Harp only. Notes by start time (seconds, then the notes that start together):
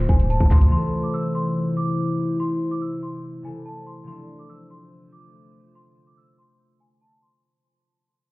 Already playing: C3 F3 A3 D4 A4
0.68 C3 E3
0.72 A3 E4
0.76 A4
3.42 C3 E3 A3 E4
3.46 A4
4.04 C3 F3
4.08 A3 D4
4.12 A4